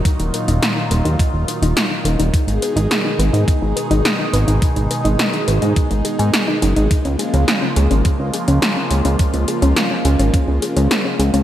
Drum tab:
HH |xxxxx-xxx-xxx-xx|xxxxx-xxx-xxx-xx|xxxxxxxxxxxxx-xx|xxxxx-xxx-xxx-xx|
SD |----o-------o---|----o-------o---|----o-------o---|----o-------o---|
BD |o-------o-------|o-------o-------|o-------o-------|o-------o-------|

HH |xxxxx-xxx-xxx-xx|
SD |----o-------o---|
BD |o-------o-------|